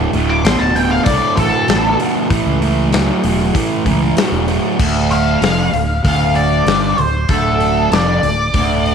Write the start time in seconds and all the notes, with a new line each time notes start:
Already playing: D2 A2
0.13 D1 D2 A2, open hi-hat
0.30 D6
0.44 A1 D2 B2 C6, snare, open hi-hat
0.59 D1 A5
0.75 D2 B2 G5, open hi-hat
0.91 F5
1.04 C2 D2 A2 D5, kick, open hi-hat
1.36 A1 D2 A2 A4, kick, open hi-hat
1.68 A1 D2 B2, snare, open hi-hat
1.99 D2 B2, open hi-hat
2.30 A1 A2 E3, kick, open hi-hat
2.46 C#2
2.61 A2 E3, open hi-hat
2.92 A2 F#3, snare, open hi-hat
3.23 E1 A2 F#3, open hi-hat
3.54 A2 E3, kick, open hi-hat
3.85 C#2 A2 E3, kick, open hi-hat
4.17 A2 F#3, snare, open hi-hat
4.32 E1
4.47 A2 F#3, open hi-hat
4.79 D1 D2, kick, crash
5.11 F5, open hi-hat
5.42 F1 F2, snare, open hi-hat
5.73 D1 D2, open hi-hat
6.04 D1 D2 F5, kick, open hi-hat
6.35 D5, open hi-hat
6.66 G1 G2, snare, open hi-hat
6.98 D1 D2 C5, open hi-hat
7.29 D1 D2 A4, kick, open hi-hat
7.61 open hi-hat
7.92 F1 F2 D5, snare, open hi-hat
8.23 D1 D2, open hi-hat
8.54 D1 D2, kick, open hi-hat
8.86 open hi-hat